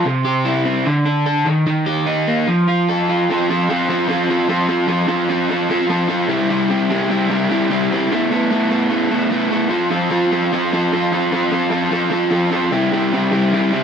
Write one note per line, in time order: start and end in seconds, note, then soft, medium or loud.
0.06 0.86 C3 medium
0.25 0.86 G4 medium
0.45 0.86 E4 medium
0.65 0.86 C4 medium
0.86 1.46 D3 medium
1.06 1.47 D4 medium
1.26 1.47 A4 medium
1.46 1.65 D#3 medium
1.67 2.47 D#3 medium
1.86 2.47 G4 medium
2.07 2.47 D#4 medium
2.28 2.48 A#3 medium
2.48 3.28 F3 medium
2.68 3.08 F4 medium
2.89 3.29 A4 medium
3.09 3.29 F4 medium
3.30 3.49 F3 medium
3.30 3.50 C4 medium
3.30 3.50 F4 loud
3.30 3.50 A4 loud
3.49 3.69 F3 medium
3.49 3.69 C4 medium
3.49 3.70 F4 medium
3.49 3.70 A4 medium
3.70 3.88 F3 loud
3.70 3.89 C4 loud
3.70 3.89 F4 loud
3.70 3.89 A4 loud
3.89 4.07 F3 medium
3.89 4.08 C4 medium
3.89 4.08 F4 medium
3.89 4.09 A4 medium
4.08 4.28 F3 loud
4.08 4.29 C4 loud
4.08 4.29 F4 loud
4.08 4.30 A4 loud
4.29 4.47 F3 medium
4.29 4.48 C4 medium
4.29 4.48 F4 medium
4.29 4.48 A4 medium
4.48 4.67 F3 loud
4.48 4.68 C4 loud
4.48 4.67 F4 loud
4.48 4.68 A4 loud
4.68 4.86 F3 medium
4.68 4.87 C4 medium
4.68 4.88 F4 medium
4.68 4.88 A4 medium
4.88 5.06 F3 medium
4.88 5.08 C4 medium
4.88 5.07 F4 medium
4.88 5.07 A4 medium
5.07 5.28 F3 medium
5.07 5.29 C4 medium
5.07 5.29 F4 medium
5.07 5.29 A4 medium
5.29 5.48 F3 loud
5.29 5.49 C4 loud
5.29 5.49 F4 loud
5.29 5.49 A4 loud
5.49 5.69 F3 medium
5.49 5.69 C4 medium
5.49 5.69 F4 medium
5.49 5.70 A4 medium
5.70 5.88 F3 medium
5.70 5.89 C4 loud
5.70 5.89 F4 loud
5.70 5.89 A4 loud
5.89 6.07 F3 medium
5.89 6.07 C4 medium
5.89 6.08 F4 medium
5.89 6.08 A4 medium
6.08 6.28 F3 loud
6.08 6.27 C4 loud
6.08 6.29 F4 loud
6.08 6.29 A4 loud
6.28 6.48 C3 loud
6.28 6.49 G3 medium
6.28 6.49 C4 loud
6.28 6.51 E4 loud
6.28 6.50 G4 loud
6.50 6.68 C3 medium
6.50 6.69 G3 loud
6.50 6.69 C4 medium
6.50 6.70 E4 loud
6.50 6.70 G4 medium
6.69 6.89 C3 medium
6.69 6.89 G3 medium
6.69 6.90 C4 medium
6.69 6.91 E4 medium
6.69 6.90 G4 medium
6.90 7.08 C3 loud
6.90 7.09 G3 loud
6.90 7.09 C4 loud
6.90 7.11 E4 loud
6.90 7.10 G4 loud
7.09 7.28 C3 medium
7.09 7.28 G3 medium
7.09 7.29 C4 medium
7.09 7.30 E4 loud
7.09 7.30 G4 medium
7.29 7.49 C3 medium
7.29 7.50 G3 medium
7.29 7.49 C4 loud
7.29 7.50 E4 loud
7.29 7.50 G4 loud
7.50 7.69 C3 medium
7.50 7.69 G3 medium
7.50 7.69 C4 medium
7.50 7.70 E4 loud
7.50 7.71 G4 loud
7.70 7.90 C3 loud
7.70 7.91 G3 loud
7.70 7.91 C4 loud
7.70 7.92 E4 loud
7.70 7.92 G4 loud
7.91 8.10 C3 medium
7.91 8.11 G3 medium
7.91 8.11 C4 medium
7.91 8.11 E4 medium
7.91 8.11 G4 medium
8.12 8.30 A3 medium
8.12 8.31 B3 medium
8.12 8.31 E4 medium
8.12 8.32 A4 medium
8.31 8.51 A3 medium
8.31 8.51 B3 medium
8.31 8.51 E4 medium
8.31 8.53 A4 medium
8.51 8.70 A3 medium
8.51 8.70 B3 loud
8.51 8.70 E4 loud
8.51 8.72 A4 loud
8.70 8.90 A3 medium
8.70 8.90 B3 medium
8.70 8.90 E4 medium
8.70 8.91 A4 loud
8.90 9.10 A3 medium
8.90 9.10 B3 medium
8.90 9.10 E4 loud
8.90 9.11 A4 medium
9.11 9.31 A3 medium
9.11 9.30 B3 medium
9.11 9.31 E4 medium
9.11 9.32 A4 medium
9.31 9.50 A3 loud
9.31 9.50 B3 loud
9.31 9.50 E4 loud
9.31 9.52 A4 loud
9.51 9.69 A3 medium
9.51 9.69 B3 medium
9.51 9.70 E4 medium
9.51 9.71 A4 medium
9.69 9.90 F3 medium
9.69 9.91 C4 medium
9.69 9.91 F4 loud
9.69 9.91 A4 loud
9.91 10.10 F3 medium
9.91 10.10 C4 medium
9.91 10.11 F4 medium
9.91 10.11 A4 medium
10.11 10.31 F3 loud
10.11 10.32 C4 loud
10.11 10.32 F4 loud
10.11 10.32 A4 loud
10.32 10.52 F3 medium
10.32 10.52 C4 medium
10.32 10.52 F4 medium
10.32 10.52 A4 medium
10.53 10.71 F3 medium
10.53 10.72 C4 loud
10.53 10.73 F4 medium
10.53 10.73 A4 loud
10.72 10.91 F3 medium
10.72 10.93 C4 medium
10.72 10.92 F4 medium
10.72 10.92 A4 loud
10.92 11.11 F3 loud
10.92 11.12 C4 loud
10.92 11.12 F4 loud
10.92 11.12 A4 loud
11.12 11.31 F3 medium
11.12 11.32 C4 medium
11.12 11.31 F4 medium
11.12 11.31 A4 medium
11.32 11.50 F3 medium
11.32 11.51 C4 medium
11.32 11.51 F4 loud
11.32 11.51 A4 medium
11.51 11.69 F3 medium
11.51 11.70 C4 medium
11.51 11.70 F4 medium
11.51 11.70 A4 medium
11.70 11.90 F3 loud
11.70 11.92 C4 loud
11.70 11.91 F4 loud
11.70 11.91 A4 loud
11.91 12.09 F3 medium
11.91 12.09 C4 medium
11.91 12.09 F4 medium
11.91 12.10 A4 loud
12.10 12.30 F3 medium
12.10 12.29 C4 medium
12.10 12.30 F4 loud
12.10 12.31 A4 loud
12.31 12.50 F3 medium
12.31 12.50 C4 medium
12.31 12.51 F4 medium
12.31 12.52 A4 loud
12.51 12.71 F3 medium
12.51 12.71 C4 loud
12.51 12.71 F4 loud
12.51 12.72 A4 loud
12.71 12.91 C3 medium
12.71 12.91 G3 loud
12.71 12.92 C4 medium
12.71 12.92 E4 loud
12.71 12.93 G4 loud
12.92 13.12 C3 loud
12.92 13.12 G3 medium
12.92 13.12 C4 medium
12.92 13.13 E4 medium
12.92 13.13 G4 loud
13.13 13.30 C3 medium
13.13 13.31 G3 medium
13.13 13.31 C4 medium
13.13 13.31 E4 medium
13.13 13.31 G4 medium
13.31 13.51 C3 loud
13.31 13.52 G3 loud
13.31 13.52 C4 loud
13.31 13.52 E4 loud
13.31 13.53 G4 loud
13.52 13.71 C3 medium
13.52 13.71 G3 medium
13.52 13.72 C4 medium
13.52 13.72 E4 loud
13.52 13.73 G4 loud
13.72 13.84 C3 loud
13.72 13.84 G3 loud
13.72 13.84 C4 loud
13.72 13.84 E4 loud
13.72 13.84 G4 loud